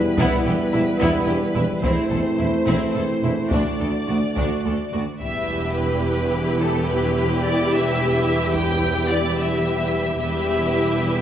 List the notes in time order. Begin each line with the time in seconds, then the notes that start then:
Already playing: E3 G3 B3 E4 B4
0.18 E1 E2 B3 E4, taiko
0.45 E1 E2 E4 G4
0.73 E1 E2 E4
0.99 E1 E2 B3 E4, taiko
1.27 E1 E2 E4 G4
1.54 E1 E2 E4
1.82 E1 E2 E3 A3 C4 E4 C5, taiko
2.10 E1 E2 E4 A4
2.38 E1 E2 E4
2.66 E1 E2 C4 E4, taiko
2.94 E1 E2 E4 A4
3.23 E1 E2 E4
3.51 D2 D3 D4 F#4 D5, taiko
3.79 D2 F#4 A4
4.07 D2 F#4
4.36 D2 D4 F#4, taiko
4.64 D2 F#4 A4
4.93 D2 F#4
5.21 E1 E2 G3 B3 E4 G4 B4 E5, taiko
5.75 B4
6.61 A4
6.88 B4
7.45 D5
7.72 E5
8.54 G5, taiko
9.10 D5
9.39 E5
10.20 E1 E2 G3 B3 E4 G4 B4 E5